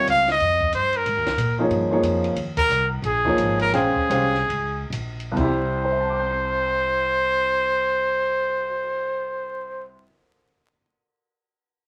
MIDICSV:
0, 0, Header, 1, 7, 480
1, 0, Start_track
1, 0, Tempo, 328407
1, 1538, Time_signature, 4, 2, 24, 8
1, 4423, Tempo, 350467
1, 5383, Tempo, 382897
1, 6343, Tempo, 434153
1, 7303, Tempo, 468384
1, 13975, End_track
2, 0, Start_track
2, 0, Title_t, "Trumpet"
2, 0, Program_c, 0, 56
2, 149, Note_on_c, 0, 77, 95
2, 405, Note_off_c, 0, 77, 0
2, 461, Note_on_c, 0, 75, 100
2, 1045, Note_off_c, 0, 75, 0
2, 1094, Note_on_c, 0, 72, 88
2, 1414, Note_on_c, 0, 70, 78
2, 1436, Note_off_c, 0, 72, 0
2, 2343, Note_off_c, 0, 70, 0
2, 3773, Note_on_c, 0, 70, 103
2, 4215, Note_off_c, 0, 70, 0
2, 4463, Note_on_c, 0, 68, 89
2, 5164, Note_off_c, 0, 68, 0
2, 5226, Note_on_c, 0, 70, 96
2, 5385, Note_off_c, 0, 70, 0
2, 5414, Note_on_c, 0, 68, 86
2, 6775, Note_off_c, 0, 68, 0
2, 7315, Note_on_c, 0, 72, 84
2, 11929, Note_off_c, 0, 72, 0
2, 13975, End_track
3, 0, Start_track
3, 0, Title_t, "Upright piano"
3, 0, Program_c, 1, 0
3, 0, Note_on_c, 1, 48, 53
3, 0, Note_on_c, 1, 55, 60
3, 0, Note_on_c, 1, 65, 53
3, 0, Note_on_c, 1, 70, 49
3, 0, Note_on_c, 1, 75, 64
3, 343, Note_off_c, 1, 55, 0
3, 348, Note_off_c, 1, 48, 0
3, 349, Note_off_c, 1, 65, 0
3, 354, Note_off_c, 1, 70, 0
3, 361, Note_off_c, 1, 75, 0
3, 2316, Note_on_c, 1, 53, 66
3, 2330, Note_on_c, 1, 58, 56
3, 2333, Note_on_c, 1, 63, 64
3, 2340, Note_on_c, 1, 68, 59
3, 2356, Note_on_c, 1, 73, 67
3, 2764, Note_off_c, 1, 53, 0
3, 2771, Note_off_c, 1, 58, 0
3, 2773, Note_off_c, 1, 63, 0
3, 2776, Note_off_c, 1, 68, 0
3, 2784, Note_off_c, 1, 73, 0
3, 2789, Note_on_c, 1, 53, 69
3, 2794, Note_on_c, 1, 58, 61
3, 2806, Note_on_c, 1, 63, 53
3, 2808, Note_on_c, 1, 68, 58
3, 2820, Note_on_c, 1, 73, 73
3, 3414, Note_off_c, 1, 53, 0
3, 3416, Note_off_c, 1, 58, 0
3, 3423, Note_off_c, 1, 63, 0
3, 3424, Note_off_c, 1, 68, 0
3, 3430, Note_off_c, 1, 73, 0
3, 4725, Note_on_c, 1, 53, 69
3, 4732, Note_on_c, 1, 58, 58
3, 4732, Note_on_c, 1, 63, 60
3, 4746, Note_on_c, 1, 68, 60
3, 4749, Note_on_c, 1, 73, 66
3, 5350, Note_off_c, 1, 53, 0
3, 5354, Note_off_c, 1, 58, 0
3, 5354, Note_off_c, 1, 63, 0
3, 5361, Note_off_c, 1, 68, 0
3, 5362, Note_off_c, 1, 73, 0
3, 5380, Note_on_c, 1, 56, 68
3, 5390, Note_on_c, 1, 79, 61
3, 5394, Note_on_c, 1, 61, 60
3, 5402, Note_on_c, 1, 72, 57
3, 5406, Note_on_c, 1, 77, 69
3, 5819, Note_off_c, 1, 56, 0
3, 5833, Note_off_c, 1, 61, 0
3, 5836, Note_off_c, 1, 79, 0
3, 5838, Note_on_c, 1, 56, 65
3, 5840, Note_off_c, 1, 72, 0
3, 5844, Note_off_c, 1, 77, 0
3, 5852, Note_on_c, 1, 61, 58
3, 5859, Note_on_c, 1, 72, 57
3, 5861, Note_on_c, 1, 67, 60
3, 5869, Note_on_c, 1, 77, 73
3, 6117, Note_off_c, 1, 56, 0
3, 6124, Note_off_c, 1, 61, 0
3, 6127, Note_off_c, 1, 72, 0
3, 6129, Note_off_c, 1, 67, 0
3, 6133, Note_off_c, 1, 77, 0
3, 7253, Note_on_c, 1, 36, 64
3, 7288, Note_on_c, 1, 48, 60
3, 7316, Note_on_c, 1, 55, 63
3, 7346, Note_on_c, 1, 64, 66
3, 7383, Note_on_c, 1, 67, 67
3, 7801, Note_on_c, 1, 72, 41
3, 7879, Note_on_c, 1, 76, 40
3, 7961, Note_on_c, 1, 81, 38
3, 8058, Note_on_c, 1, 86, 39
3, 8156, Note_on_c, 1, 91, 35
3, 8273, Note_on_c, 1, 96, 37
3, 11996, Note_off_c, 1, 36, 0
3, 12029, Note_off_c, 1, 48, 0
3, 12056, Note_off_c, 1, 55, 0
3, 12086, Note_off_c, 1, 64, 0
3, 12123, Note_off_c, 1, 67, 0
3, 12500, Note_off_c, 1, 72, 0
3, 12577, Note_off_c, 1, 76, 0
3, 12660, Note_off_c, 1, 81, 0
3, 12756, Note_off_c, 1, 86, 0
3, 12827, Note_off_c, 1, 91, 0
3, 12885, Note_off_c, 1, 96, 0
3, 13975, End_track
4, 0, Start_track
4, 0, Title_t, "Upright bass"
4, 0, Program_c, 2, 32
4, 115, Note_on_c, 2, 37, 78
4, 573, Note_off_c, 2, 37, 0
4, 598, Note_on_c, 2, 41, 86
4, 1054, Note_off_c, 2, 41, 0
4, 1073, Note_on_c, 2, 43, 77
4, 1531, Note_off_c, 2, 43, 0
4, 1545, Note_on_c, 2, 44, 72
4, 1707, Note_off_c, 2, 44, 0
4, 1707, Note_on_c, 2, 39, 58
4, 1849, Note_off_c, 2, 39, 0
4, 1857, Note_on_c, 2, 37, 60
4, 1996, Note_off_c, 2, 37, 0
4, 2005, Note_on_c, 2, 46, 81
4, 2475, Note_off_c, 2, 46, 0
4, 2483, Note_on_c, 2, 43, 80
4, 2950, Note_off_c, 2, 43, 0
4, 2958, Note_on_c, 2, 41, 84
4, 3430, Note_off_c, 2, 41, 0
4, 3441, Note_on_c, 2, 39, 82
4, 3914, Note_off_c, 2, 39, 0
4, 3927, Note_on_c, 2, 36, 85
4, 4405, Note_off_c, 2, 36, 0
4, 4418, Note_on_c, 2, 34, 92
4, 4878, Note_off_c, 2, 34, 0
4, 4887, Note_on_c, 2, 32, 85
4, 5361, Note_off_c, 2, 32, 0
4, 5369, Note_on_c, 2, 34, 77
4, 5645, Note_off_c, 2, 34, 0
4, 5850, Note_on_c, 2, 36, 91
4, 6319, Note_off_c, 2, 36, 0
4, 6326, Note_on_c, 2, 37, 83
4, 6784, Note_off_c, 2, 37, 0
4, 6794, Note_on_c, 2, 34, 87
4, 7282, Note_off_c, 2, 34, 0
4, 7305, Note_on_c, 2, 36, 79
4, 12003, Note_off_c, 2, 36, 0
4, 13975, End_track
5, 0, Start_track
5, 0, Title_t, "Cymbal swell"
5, 7604, Note_on_c, 9, 59, 44
5, 11036, Note_off_c, 9, 59, 0
5, 13975, End_track
6, 0, Start_track
6, 0, Title_t, "Muted upright bass strokes"
6, 5675, Note_on_c, 9, 29, 37
6, 5800, Note_off_c, 9, 29, 0
6, 13975, End_track
7, 0, Start_track
7, 0, Title_t, "Drums"
7, 107, Note_on_c, 9, 44, 64
7, 107, Note_on_c, 9, 51, 72
7, 253, Note_off_c, 9, 44, 0
7, 253, Note_off_c, 9, 51, 0
7, 408, Note_on_c, 9, 51, 41
7, 410, Note_on_c, 9, 38, 57
7, 555, Note_off_c, 9, 51, 0
7, 556, Note_off_c, 9, 38, 0
7, 586, Note_on_c, 9, 51, 58
7, 733, Note_off_c, 9, 51, 0
7, 887, Note_on_c, 9, 36, 59
7, 1033, Note_off_c, 9, 36, 0
7, 1059, Note_on_c, 9, 44, 49
7, 1059, Note_on_c, 9, 51, 73
7, 1206, Note_off_c, 9, 44, 0
7, 1206, Note_off_c, 9, 51, 0
7, 1356, Note_on_c, 9, 51, 46
7, 1502, Note_off_c, 9, 51, 0
7, 1548, Note_on_c, 9, 51, 59
7, 1694, Note_off_c, 9, 51, 0
7, 1848, Note_on_c, 9, 51, 46
7, 1850, Note_on_c, 9, 38, 57
7, 1994, Note_off_c, 9, 51, 0
7, 1996, Note_off_c, 9, 38, 0
7, 2017, Note_on_c, 9, 44, 67
7, 2017, Note_on_c, 9, 51, 66
7, 2164, Note_off_c, 9, 44, 0
7, 2164, Note_off_c, 9, 51, 0
7, 2493, Note_on_c, 9, 51, 52
7, 2640, Note_off_c, 9, 51, 0
7, 2971, Note_on_c, 9, 44, 55
7, 2971, Note_on_c, 9, 51, 73
7, 3117, Note_off_c, 9, 44, 0
7, 3117, Note_off_c, 9, 51, 0
7, 3275, Note_on_c, 9, 51, 45
7, 3421, Note_off_c, 9, 51, 0
7, 3454, Note_on_c, 9, 51, 62
7, 3601, Note_off_c, 9, 51, 0
7, 3756, Note_on_c, 9, 51, 72
7, 3757, Note_on_c, 9, 36, 75
7, 3902, Note_off_c, 9, 51, 0
7, 3903, Note_off_c, 9, 36, 0
7, 3944, Note_on_c, 9, 44, 68
7, 4090, Note_off_c, 9, 44, 0
7, 4434, Note_on_c, 9, 51, 61
7, 4571, Note_off_c, 9, 51, 0
7, 4723, Note_on_c, 9, 36, 44
7, 4860, Note_off_c, 9, 36, 0
7, 4904, Note_on_c, 9, 44, 56
7, 4904, Note_on_c, 9, 51, 69
7, 5041, Note_off_c, 9, 44, 0
7, 5041, Note_off_c, 9, 51, 0
7, 5199, Note_on_c, 9, 51, 49
7, 5336, Note_off_c, 9, 51, 0
7, 5392, Note_on_c, 9, 51, 59
7, 5393, Note_on_c, 9, 38, 38
7, 5517, Note_off_c, 9, 51, 0
7, 5518, Note_off_c, 9, 38, 0
7, 5675, Note_on_c, 9, 36, 55
7, 5800, Note_off_c, 9, 36, 0
7, 5856, Note_on_c, 9, 44, 57
7, 5856, Note_on_c, 9, 51, 79
7, 5981, Note_off_c, 9, 44, 0
7, 5981, Note_off_c, 9, 51, 0
7, 6159, Note_on_c, 9, 38, 30
7, 6285, Note_off_c, 9, 38, 0
7, 6349, Note_on_c, 9, 51, 58
7, 6460, Note_off_c, 9, 51, 0
7, 6818, Note_on_c, 9, 44, 60
7, 6818, Note_on_c, 9, 51, 72
7, 6929, Note_off_c, 9, 44, 0
7, 6929, Note_off_c, 9, 51, 0
7, 7122, Note_on_c, 9, 51, 44
7, 7232, Note_off_c, 9, 51, 0
7, 7308, Note_on_c, 9, 36, 55
7, 7308, Note_on_c, 9, 49, 57
7, 7410, Note_off_c, 9, 36, 0
7, 7411, Note_off_c, 9, 49, 0
7, 13975, End_track
0, 0, End_of_file